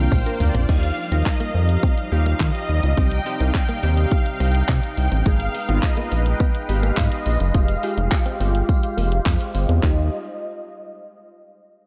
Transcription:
Already playing: synth keys A#3 D4 F4 A#4, analog synth pad A#3 D4 F4
0.12 analog synth bass A#1, clean electric guitar D4, supersaw synth C5, kick, mid tom, tambourine, shaker
0.26 synth keys A#3 D4 F4 A#4, closed hi-hat, shaker
0.40 analog synth bass D2, supersaw synth D5, muted clean electric guitar stroke, floor tom, open hi-hat, tambourine, shaker
0.55 analog synth bass A#1, clean electric guitar C4, closed hi-hat, floor tom, tambourine, shaker
0.69 analog synth bass D#2, analog synth pad F3 G3 D#4, clean electric guitar D#4, synth keys D#4 F4 G4, supersaw synth F5, kick, closed hi-hat, crash
0.83 closed hi-hat
0.98 muted clean electric guitar stroke
1.12 analog synth bass D#2, clean electric guitar C4, synth keys D#4 F4 A#4, supersaw synth D#5, closed hi-hat
1.26 supersaw synth D#5, muted clean electric guitar stroke, kick, clap, closed hi-hat
1.40 clean electric guitar A#3, closed hi-hat
1.55 analog synth bass F2, clean electric guitar C4
1.69 supersaw synth F5, closed hi-hat
1.83 clean electric guitar C4, kick, closed hi-hat
1.98 closed hi-hat
2.12 analog synth bass D#2, synth keys D#4 F4 G4, supersaw synth F5, muted clean electric guitar stroke
2.26 clean electric guitar A#3, closed hi-hat
2.40 analog synth bass D#3, clean electric guitar F4, supersaw synth D#5, kick, clap, closed hi-hat
2.55 closed hi-hat
2.69 analog synth bass D#2, muted clean electric guitar stroke
2.83 analog synth bass C#2, clean electric guitar D#4, closed hi-hat
2.97 analog synth bass C2, analog synth pad C3 D#4, synth keys C4 D#4 G4, clean electric guitar C4, supersaw synth G5, kick, closed hi-hat
3.11 closed hi-hat
3.26 synth keys C4 D#4 G4, muted clean electric guitar stroke, open hi-hat
3.40 analog synth bass C2, clean electric guitar C4, supersaw synth F5, closed hi-hat
3.55 supersaw synth G5, muted clean electric guitar stroke, kick, clap, closed hi-hat
3.69 clean electric guitar A#3, closed hi-hat
3.83 analog synth bass D#2, synth keys C4 D#4 G4, clean electric guitar C4, open hi-hat
3.97 supersaw synth F5, closed hi-hat
4.11 kick, closed hi-hat
4.26 closed hi-hat
4.40 analog synth bass C2, clean electric guitar C4, supersaw synth G5, open hi-hat
4.55 closed hi-hat
4.69 analog synth bass C3, clean electric guitar D#4, kick, clap, closed hi-hat
4.83 closed hi-hat
4.97 analog synth bass C2, supersaw synth G5, muted clean electric guitar stroke, open hi-hat
5.12 analog synth bass A1, clean electric guitar C4, closed hi-hat
5.26 analog synth bass G#1, clean electric guitar G#3, analog synth pad G#3 B4, synth keys B3 D#4 G#4, supersaw synth F5, kick, closed hi-hat, tambourine
5.40 closed hi-hat, tambourine
5.55 muted clean electric guitar stroke, open hi-hat, tambourine
5.69 analog synth bass G#1, clean electric guitar B3, synth keys B3 D#4 F4, supersaw synth D#5, closed hi-hat
5.83 supersaw synth D#5, kick, clap, closed hi-hat, tambourine
5.97 clean electric guitar A#3, closed hi-hat
6.11 analog synth bass A#1, clean electric guitar B3, open hi-hat, tambourine
6.26 supersaw synth G5, closed hi-hat
6.40 clean electric guitar B3, kick, closed hi-hat, tambourine
6.55 closed hi-hat, tambourine
6.69 analog synth bass G#1, synth keys B3 D#4 G4, supersaw synth F5, muted clean electric guitar stroke, open hi-hat, tambourine
6.83 clean electric guitar A#3, closed hi-hat, tambourine
6.97 analog synth bass G#2, clean electric guitar F4, supersaw synth D#5, kick, clap, closed hi-hat, tambourine
7.12 closed hi-hat
7.26 analog synth bass A#1, muted clean electric guitar stroke, open hi-hat, tambourine
7.40 analog synth bass F#1, clean electric guitar D#4, closed hi-hat, tambourine
7.54 analog synth bass F1, synth keys G#3 F4 G4, clean electric guitar F4, analog synth pad F4 G4, supersaw synth F5, kick, closed hi-hat, tambourine
7.68 closed hi-hat, tambourine
7.83 synth keys G#3 F4 G4, muted clean electric guitar stroke, open hi-hat, tambourine
7.97 analog synth bass F1, clean electric guitar D#4, supersaw synth F5, closed hi-hat
8.12 supersaw synth G5, muted clean electric guitar stroke, kick, clap, closed hi-hat, tambourine
8.26 clean electric guitar C4, closed hi-hat
8.40 analog synth bass G1, synth keys G#3 F4 G4, clean electric guitar C4, open hi-hat, tambourine
8.54 supersaw synth F5, closed hi-hat
8.69 kick, closed hi-hat, tambourine
8.83 closed hi-hat, tambourine
8.97 analog synth bass F1, clean electric guitar A#3, supersaw synth F5, open hi-hat, tambourine
9.12 closed hi-hat
9.26 analog synth bass F2, clean electric guitar C4, supersaw synth C5, kick, clap, closed hi-hat, tambourine
9.41 closed hi-hat
9.55 analog synth bass G1, supersaw synth D#5, muted clean electric guitar stroke, open hi-hat, tambourine
9.69 analog synth bass E2, clean electric guitar C4, closed hi-hat
9.83 analog synth bass D#2, analog synth pad G3 D#4 F4, clean electric guitar A#3, synth keys D#4 F4 G4, supersaw synth D#5, kick, clap, tambourine

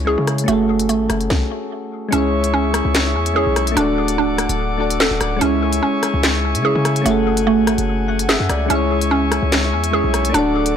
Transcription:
Already playing: 808-style bass C#2, synth keys G#3 C#4 E4 G#4 C#5, synth pluck C#4
0.05 synth keys G#3 C#4 E4 G#4, synth pluck G#4
0.09 synth keys C#5
0.18 808-style bass C#3
0.27 cross-stick, closed hi-hat
0.38 closed hi-hat
0.44 synth keys A3 C#4
0.48 808-style bass F#1, synth pluck A3, synth keys F#4 G#4, closed hi-hat
0.53 synth keys A4
0.79 closed hi-hat
0.89 808-style bass G#1, synth pluck A3, closed hi-hat
1.10 808-style bass F#1, cross-stick, closed hi-hat
1.21 closed hi-hat
1.30 kick, snare
2.09 808-style bass C#2, synth keys G#3 C#4, synth pluck C#4, pipe organ G#4 E5 C#6, closed hi-hat
2.13 synth keys E4 G#4
2.18 synth keys C#5
2.44 closed hi-hat
2.54 synth pluck C#4
2.74 cross-stick, closed hi-hat
2.85 808-style bass C#2
2.95 snare, clap, closed hi-hat
3.15 808-style bass E2
3.26 closed hi-hat
3.34 synth keys G#3 C#4 E4 G#4, synth pluck G#4
3.38 synth keys C#5
3.47 808-style bass B1
3.56 cross-stick, closed hi-hat
3.67 closed hi-hat
3.72 synth keys A3 D4
3.76 808-style bass D1, synth pluck D4, synth keys F#4 A4, pipe organ A4 F#5 D6, closed hi-hat
3.81 synth keys D5
4.08 closed hi-hat
4.18 808-style bass C#1, synth pluck D4
4.38 cross-stick, closed hi-hat
4.49 808-style bass D1, closed hi-hat
4.77 synth keys A3 D4 F#4 A4
4.82 synth keys D5
4.90 closed hi-hat
5.00 synth pluck A4, snare, clap
5.11 808-style bass D1
5.21 808-style bass D1, cross-stick, closed hi-hat
5.37 synth keys G#3 C#4
5.41 808-style bass C#2, synth pluck C#4, synth keys E4 G#4, pipe organ E5 G#5 C#6, closed hi-hat
5.46 synth keys C#5
5.73 closed hi-hat
5.83 synth pluck C#4
6.03 cross-stick, closed hi-hat
6.14 808-style bass C#2
6.23 snare, clap, closed hi-hat
6.55 808-style bass C#3, closed hi-hat
6.62 synth keys G#3 C#4 E4 G#4, synth pluck G#4
6.67 synth keys C#5
6.75 808-style bass C#3
6.85 cross-stick, closed hi-hat
6.96 closed hi-hat
7.02 synth keys A3 C#4
7.06 808-style bass F#1, synth pluck A3, synth keys F#4 G#4, pipe organ F#5, closed hi-hat
7.11 synth keys A4
7.37 closed hi-hat
7.47 synth pluck A3
7.58 808-style bass G#1
7.67 cross-stick, closed hi-hat
7.78 808-style bass F#1, closed hi-hat
8.08 synth keys F#5
8.19 closed hi-hat
8.29 synth pluck G#4, synth keys E5, snare, clap
8.40 808-style bass F#2
8.49 808-style bass C#2, synth keys D5, cross-stick, closed hi-hat
8.66 808-style bass C#2, synth keys G#3 C#4, synth pluck C#4, pipe organ E5 C#6, closed hi-hat
8.71 synth keys E4 G#4
8.75 synth keys C#5
9.01 closed hi-hat
9.11 synth pluck C#4
9.32 cross-stick, closed hi-hat
9.43 808-style bass C#2
9.52 snare, clap, closed hi-hat
9.73 808-style bass E2
9.84 closed hi-hat
9.91 synth keys G#3 C#4 E4 G#4, synth pluck G#4
9.96 synth keys C#5
10.04 808-style bass B1
10.14 cross-stick, closed hi-hat
10.25 closed hi-hat
10.29 synth keys A3 D4
10.34 808-style bass D1, synth pluck D4, synth keys F#4 A4, pipe organ A4 F#5 D6, closed hi-hat
10.38 synth keys D5
10.66 closed hi-hat

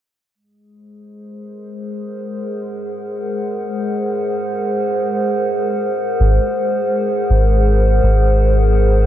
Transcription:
0.35 ambient pad G#3
0.43 ambient pad G#4
0.72 ambient pad C5
1.15 ambient pad A#4
1.98 ambient pad F#5
6.20 sub bass G#1
7.30 sub bass G#1
8.03 sub bass G#1

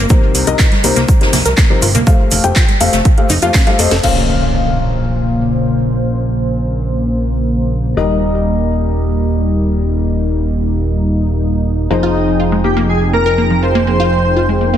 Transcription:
0.10 felt piano C3 G3 D#4 A#4 C5, synth pluck A#3, kick, closed hi-hat, high conga, shaker
0.35 analog synth bass C2, open hi-hat, shaker
0.47 analog synth bass C2, felt piano C3 G3 D#4 A#4 D#5, closed hi-hat, shaker
0.59 synth pluck F4, kick, snare, clap, closed hi-hat, shaker
0.72 synth pluck G3, snare, closed hi-hat
0.84 analog synth bass C2, felt piano C3 G3 D#4 A#4 C5, synth pluck A#3, open hi-hat, shaker
0.96 analog synth bass C2, synth pluck A#3, snare, closed hi-hat, shaker
1.08 kick, closed hi-hat, shaker
1.21 felt piano C3 G3 D#4 A#4 C5, snare, closed hi-hat
1.33 analog synth bass C2, synth pluck A#3, snare, open hi-hat, high conga, low conga, shaker
1.46 analog synth bass C2, synth pluck A#4, snare, closed hi-hat, shaker
1.57 synth pluck A#3, kick, snare, clap, closed hi-hat, shaker
1.70 felt piano C3 G3 D#4 A#4 C5, synth pluck F3
1.82 analog synth bass G1, synth pluck F4, open hi-hat, shaker
1.95 analog synth bass C2, synth pluck A#3, closed hi-hat, low conga, shaker
2.07 synth pluck A3, felt piano A3 G4 C5 F5, kick, closed hi-hat, high conga, shaker
2.31 analog synth bass F1, open hi-hat, low conga, shaker
2.44 analog synth bass F1, felt piano A3 G4 C5 G5, closed hi-hat, high conga, shaker
2.56 synth pluck F4, kick, snare, clap, closed hi-hat, shaker
2.69 synth pluck G3, closed hi-hat
2.81 analog synth bass F1, felt piano A3 G4 C5 F5, synth pluck A3, open hi-hat, shaker
2.92 analog synth bass F1, synth pluck A3, snare, closed hi-hat, shaker
3.05 kick, closed hi-hat, shaker
3.18 felt piano A3 G4 C5 F5, closed hi-hat
3.29 analog synth bass F1, synth pluck D#4, open hi-hat, high conga, low conga, shaker
3.42 analog synth bass F2, felt piano A3 G4 C5 F5, synth pluck F4, closed hi-hat, shaker
3.54 synth pluck C4, kick, snare, clap, closed hi-hat, shaker
3.67 synth pluck G3, felt piano A3 G4 C5 F5, snare, closed hi-hat
3.79 analog synth bass F1, felt piano A3 G4 C5 D#5, synth pluck A4, open hi-hat, shaker
3.91 analog synth bass F1, synth pluck A4, snare, closed hi-hat, shaker
4.04 analog synth bass A#1, felt piano A#2 A#3 C#4 C5 F5, analog synth pad C#3 A#3 C5, crash, impact
7.97 analog synth bass D#1, felt piano G3 D#4 A#4 D#5, analog synth pad G3 D#4
11.90 analog synth bass F1, felt piano F3 D#4 G#4 C5, analog synth pad F3 C4 G#4 G5, synth pluck A#3, digital synth lead D#4, supersaw synth D#4
12.03 synth pluck F4
12.40 synth pluck F4
12.52 synth pluck G#3
12.64 synth pluck A#3, digital synth lead G4, supersaw synth G4
12.77 synth pluck A#3
12.89 digital synth lead G#4, supersaw synth G#4
13.13 synth pluck A#3, supersaw synth A#4, digital synth lead A#4
13.26 synth pluck A#4
13.38 synth pluck A#3
13.50 synth pluck F3
13.63 synth pluck F4, supersaw synth C5, digital synth lead C5
13.75 synth pluck A#3
13.87 synth pluck A#3
14.00 synth pluck F4
14.36 synth pluck F4
14.49 synth pluck G#3
14.61 synth pluck A#3
14.74 synth pluck A#3

